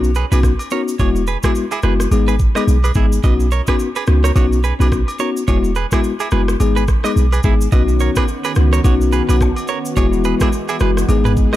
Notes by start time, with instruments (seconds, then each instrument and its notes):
Already playing: 808-style bass B1
0.04 shaker
0.15 clean electric guitar G#4 B4, shaker
0.32 808-style bass B1, tine electric piano B3 C#4 D#4 F#4, clean electric guitar G#4 B4, high agogo, shaker
0.43 kick, cross-stick, shaker
0.59 high agogo, shaker
0.71 tine electric piano B3 C#4 D#4 F#4, clean electric guitar A#4 C#5, shaker
0.88 shaker
0.99 808-style bass E1, tine electric piano G#3 B3 E4 F#4, clean electric guitar G#4 C#5, kick, high agogo, shaker
1.16 shaker
1.27 clean electric guitar G#4 B4, shaker
1.43 tine electric piano G#3 B3 E4 F#4, clean electric guitar E4 G#4, kick, cross-stick, high agogo, shaker
1.55 shaker
1.72 clean electric guitar E4 G#4, high agogo, shaker
1.83 808-style bass F#1, tine electric piano G#3 B3 E4 F#4, clean electric guitar G#4 B4, cross-stick, shaker
2.00 cross-stick, shaker
2.11 808-style bass G#1, tine electric piano G#3 B3 D#4 G#4, high agogo, shaker
2.28 clean electric guitar G#4 B4, shaker
2.39 kick, shaker
2.55 tine electric piano G#3 B3 D#4 G#4, clean electric guitar B4 D#5, cross-stick, high agogo, shaker
2.67 808-style bass B1, shaker
2.84 clean electric guitar G#4 B4, high agogo, shaker
2.95 808-style bass G#1, tine electric piano G#3 B3 D#4 G#4, clean electric guitar E4 G#4, kick, shaker
3.12 shaker
3.24 808-style bass B1, tine electric piano B3 C#4 D#4 F#4, clean electric guitar B4 D#5, kick, high agogo, shaker
3.40 shaker
3.51 clean electric guitar A#4 C#5, shaker
3.67 tine electric piano B3 C#4 D#4 F#4, clean electric guitar G#4 B4, kick, cross-stick, high agogo, shaker
3.79 shaker
3.96 clean electric guitar G#4 B4, high agogo, shaker
4.07 808-style bass C#2, tine electric piano B3 C#4 D#4 F#4, cross-stick, shaker
4.24 clean electric guitar A#4 C#5, cross-stick, shaker
4.35 808-style bass B1, tine electric piano B3 C#4 D#4 F#4, clean electric guitar F#4 C#5, kick, high agogo, shaker
4.53 shaker
4.64 clean electric guitar G#4 B4, shaker
4.79 808-style bass B1, tine electric piano B3 C#4 D#4 F#4, clean electric guitar G#4 B4, high agogo, shaker
4.92 kick, cross-stick, shaker
5.08 high agogo, shaker
5.19 tine electric piano B3 C#4 D#4 F#4, clean electric guitar A#4 C#5, shaker
5.37 shaker
5.48 808-style bass E1, tine electric piano G#3 B3 E4 F#4, clean electric guitar G#4 C#5, kick, high agogo, shaker
5.64 shaker
5.75 clean electric guitar G#4 B4, shaker
5.92 tine electric piano G#3 B3 E4 F#4, clean electric guitar E4 G#4, kick, cross-stick, high agogo, shaker
6.04 shaker
6.20 clean electric guitar E4 G#4, high agogo, shaker
6.31 808-style bass F#1, tine electric piano G#3 B3 E4 F#4, clean electric guitar G#4 B4, cross-stick, shaker
6.48 cross-stick, shaker
6.60 808-style bass G#1, tine electric piano G#3 B3 D#4 G#4, high agogo, shaker
6.76 clean electric guitar G#4 B4, shaker
6.88 kick, cross-stick, shaker
7.04 tine electric piano G#3 B3 D#4 G#4, clean electric guitar B4 D#5, cross-stick, high agogo, shaker
7.16 808-style bass B1, shaker
7.32 clean electric guitar G#4 B4, high agogo, shaker
7.43 808-style bass G#1, tine electric piano G#3 B3 D#4 G#4, clean electric guitar E4 G#4, kick, shaker
7.61 shaker
7.72 808-style bass B1, analog synth pad D#3 B3 C#4 F#4, tine electric piano B3 C#4 D#4 F#4, clean electric guitar B4 D#5, kick, high agogo, shaker
7.89 shaker
8.00 clean electric guitar A#4 C#5, shaker
8.16 clean electric guitar G#4 B4, kick, cross-stick, high agogo, shaker
8.28 shaker
8.44 clean electric guitar G#4 B4, high agogo, shaker
8.55 808-style bass C#2, tine electric piano B3 C#4 D#4 F#4, cross-stick, shaker
8.73 clean electric guitar A#4 C#5, cross-stick, shaker
8.84 808-style bass B1, tine electric piano B3 C#4 D#4 F#4, clean electric guitar F#4 C#5, kick, high agogo, shaker
9.01 shaker
9.12 clean electric guitar G#4 B4, shaker
9.28 808-style bass B1, tine electric piano B3 C#4 D#4 F#4, clean electric guitar G#4 B4, high agogo, shaker
9.41 kick, cross-stick, low woodblock, shaker
9.56 high agogo, shaker
9.68 clean electric guitar A#4 C#5, shaker
9.85 shaker
9.96 808-style bass E1, analog synth pad E3 G#3, tine electric piano G#3 B3 E4 F#4, clean electric guitar G#4 C#5, kick, high agogo, shaker
10.13 shaker
10.24 clean electric guitar G#4 B4, shaker
10.40 clean electric guitar E4 G#4, kick, cross-stick, high agogo, shaker
10.53 shaker
10.69 clean electric guitar E4 G#4, high agogo, shaker
10.80 808-style bass F#1, tine electric piano G#3 B3 E4 F#4, clean electric guitar G#4 B4, cross-stick, shaker
10.97 cross-stick, shaker
11.09 808-style bass G#1, analog synth pad D#3 G#4, tine electric piano G#3 B3 D#4 G#4, high agogo, shaker
11.25 clean electric guitar G#4 B4, mid tom, shaker
11.37 kick, shaker
11.53 tine electric piano G#3 B3 D#4, cross-stick